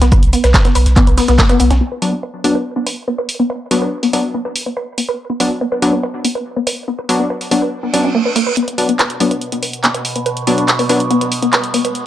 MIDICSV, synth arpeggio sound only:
0, 0, Header, 1, 2, 480
1, 0, Start_track
1, 0, Key_signature, 2, "minor"
1, 0, Tempo, 422535
1, 135, Time_signature, 4, 2, 24, 8
1, 13706, End_track
2, 0, Start_track
2, 0, Title_t, "Synth arpeggio sound"
2, 0, Program_c, 0, 84
2, 17, Note_on_c, 0, 59, 83
2, 62, Note_off_c, 0, 59, 0
2, 135, Note_on_c, 0, 71, 78
2, 206, Note_off_c, 0, 71, 0
2, 375, Note_on_c, 0, 59, 77
2, 422, Note_off_c, 0, 59, 0
2, 498, Note_on_c, 0, 71, 76
2, 565, Note_off_c, 0, 71, 0
2, 738, Note_on_c, 0, 59, 78
2, 783, Note_off_c, 0, 59, 0
2, 855, Note_on_c, 0, 71, 78
2, 925, Note_off_c, 0, 71, 0
2, 1095, Note_on_c, 0, 59, 89
2, 1142, Note_off_c, 0, 59, 0
2, 1217, Note_on_c, 0, 71, 74
2, 1285, Note_off_c, 0, 71, 0
2, 1335, Note_on_c, 0, 59, 102
2, 1382, Note_off_c, 0, 59, 0
2, 1457, Note_on_c, 0, 59, 102
2, 1485, Note_off_c, 0, 59, 0
2, 1575, Note_on_c, 0, 58, 87
2, 1646, Note_off_c, 0, 58, 0
2, 1697, Note_on_c, 0, 59, 105
2, 1743, Note_off_c, 0, 59, 0
2, 1815, Note_on_c, 0, 59, 76
2, 1843, Note_off_c, 0, 59, 0
2, 1937, Note_on_c, 0, 61, 81
2, 1983, Note_off_c, 0, 61, 0
2, 2054, Note_on_c, 0, 59, 84
2, 2102, Note_off_c, 0, 59, 0
2, 2177, Note_on_c, 0, 71, 72
2, 2245, Note_off_c, 0, 71, 0
2, 2418, Note_on_c, 0, 59, 70
2, 2463, Note_off_c, 0, 59, 0
2, 2535, Note_on_c, 0, 71, 79
2, 2605, Note_off_c, 0, 71, 0
2, 2774, Note_on_c, 0, 59, 75
2, 2822, Note_off_c, 0, 59, 0
2, 2897, Note_on_c, 0, 71, 73
2, 2965, Note_off_c, 0, 71, 0
2, 3137, Note_on_c, 0, 59, 80
2, 3183, Note_off_c, 0, 59, 0
2, 3254, Note_on_c, 0, 71, 77
2, 3325, Note_off_c, 0, 71, 0
2, 3494, Note_on_c, 0, 59, 76
2, 3542, Note_off_c, 0, 59, 0
2, 3617, Note_on_c, 0, 71, 73
2, 3685, Note_off_c, 0, 71, 0
2, 3857, Note_on_c, 0, 59, 80
2, 3902, Note_off_c, 0, 59, 0
2, 3975, Note_on_c, 0, 71, 78
2, 4045, Note_off_c, 0, 71, 0
2, 4214, Note_on_c, 0, 59, 75
2, 4262, Note_off_c, 0, 59, 0
2, 4337, Note_on_c, 0, 71, 77
2, 4405, Note_off_c, 0, 71, 0
2, 4577, Note_on_c, 0, 59, 76
2, 4622, Note_off_c, 0, 59, 0
2, 4695, Note_on_c, 0, 71, 73
2, 4765, Note_off_c, 0, 71, 0
2, 4934, Note_on_c, 0, 59, 88
2, 4982, Note_off_c, 0, 59, 0
2, 5057, Note_on_c, 0, 71, 77
2, 5125, Note_off_c, 0, 71, 0
2, 5297, Note_on_c, 0, 59, 79
2, 5343, Note_off_c, 0, 59, 0
2, 5415, Note_on_c, 0, 71, 81
2, 5485, Note_off_c, 0, 71, 0
2, 5655, Note_on_c, 0, 59, 78
2, 5702, Note_off_c, 0, 59, 0
2, 5777, Note_on_c, 0, 71, 81
2, 5845, Note_off_c, 0, 71, 0
2, 6017, Note_on_c, 0, 59, 75
2, 6063, Note_off_c, 0, 59, 0
2, 6135, Note_on_c, 0, 71, 80
2, 6206, Note_off_c, 0, 71, 0
2, 6374, Note_on_c, 0, 59, 83
2, 6422, Note_off_c, 0, 59, 0
2, 6497, Note_on_c, 0, 71, 73
2, 6565, Note_off_c, 0, 71, 0
2, 6737, Note_on_c, 0, 59, 77
2, 6782, Note_off_c, 0, 59, 0
2, 6854, Note_on_c, 0, 71, 85
2, 6925, Note_off_c, 0, 71, 0
2, 7095, Note_on_c, 0, 59, 72
2, 7142, Note_off_c, 0, 59, 0
2, 7217, Note_on_c, 0, 71, 73
2, 7285, Note_off_c, 0, 71, 0
2, 7457, Note_on_c, 0, 59, 76
2, 7502, Note_off_c, 0, 59, 0
2, 7575, Note_on_c, 0, 71, 77
2, 7646, Note_off_c, 0, 71, 0
2, 7814, Note_on_c, 0, 59, 81
2, 7862, Note_off_c, 0, 59, 0
2, 7937, Note_on_c, 0, 71, 73
2, 8005, Note_off_c, 0, 71, 0
2, 8177, Note_on_c, 0, 59, 71
2, 8222, Note_off_c, 0, 59, 0
2, 8294, Note_on_c, 0, 71, 80
2, 8365, Note_off_c, 0, 71, 0
2, 8534, Note_on_c, 0, 59, 78
2, 8582, Note_off_c, 0, 59, 0
2, 8657, Note_on_c, 0, 71, 70
2, 8725, Note_off_c, 0, 71, 0
2, 8896, Note_on_c, 0, 59, 78
2, 8942, Note_off_c, 0, 59, 0
2, 9015, Note_on_c, 0, 61, 76
2, 9062, Note_off_c, 0, 61, 0
2, 9137, Note_on_c, 0, 61, 77
2, 9164, Note_off_c, 0, 61, 0
2, 9254, Note_on_c, 0, 58, 97
2, 9302, Note_off_c, 0, 58, 0
2, 9377, Note_on_c, 0, 71, 75
2, 9404, Note_off_c, 0, 71, 0
2, 9494, Note_on_c, 0, 58, 100
2, 9542, Note_off_c, 0, 58, 0
2, 9617, Note_on_c, 0, 71, 75
2, 9662, Note_off_c, 0, 71, 0
2, 9734, Note_on_c, 0, 59, 83
2, 9782, Note_off_c, 0, 59, 0
2, 9857, Note_on_c, 0, 71, 77
2, 9925, Note_off_c, 0, 71, 0
2, 10097, Note_on_c, 0, 59, 76
2, 10143, Note_off_c, 0, 59, 0
2, 10215, Note_on_c, 0, 71, 78
2, 10285, Note_off_c, 0, 71, 0
2, 10454, Note_on_c, 0, 59, 73
2, 10502, Note_off_c, 0, 59, 0
2, 10577, Note_on_c, 0, 71, 77
2, 10645, Note_off_c, 0, 71, 0
2, 10817, Note_on_c, 0, 59, 74
2, 10863, Note_off_c, 0, 59, 0
2, 10934, Note_on_c, 0, 71, 74
2, 11005, Note_off_c, 0, 71, 0
2, 11175, Note_on_c, 0, 59, 85
2, 11222, Note_off_c, 0, 59, 0
2, 11297, Note_on_c, 0, 71, 76
2, 11365, Note_off_c, 0, 71, 0
2, 11537, Note_on_c, 0, 59, 77
2, 11582, Note_off_c, 0, 59, 0
2, 11655, Note_on_c, 0, 71, 79
2, 11725, Note_off_c, 0, 71, 0
2, 11895, Note_on_c, 0, 59, 80
2, 11942, Note_off_c, 0, 59, 0
2, 12017, Note_on_c, 0, 71, 77
2, 12085, Note_off_c, 0, 71, 0
2, 12257, Note_on_c, 0, 59, 79
2, 12303, Note_off_c, 0, 59, 0
2, 12375, Note_on_c, 0, 71, 77
2, 12446, Note_off_c, 0, 71, 0
2, 12615, Note_on_c, 0, 59, 85
2, 12662, Note_off_c, 0, 59, 0
2, 12737, Note_on_c, 0, 71, 75
2, 12805, Note_off_c, 0, 71, 0
2, 12977, Note_on_c, 0, 59, 78
2, 13023, Note_off_c, 0, 59, 0
2, 13095, Note_on_c, 0, 71, 81
2, 13165, Note_off_c, 0, 71, 0
2, 13335, Note_on_c, 0, 59, 74
2, 13382, Note_off_c, 0, 59, 0
2, 13457, Note_on_c, 0, 71, 75
2, 13525, Note_off_c, 0, 71, 0
2, 13706, End_track
0, 0, End_of_file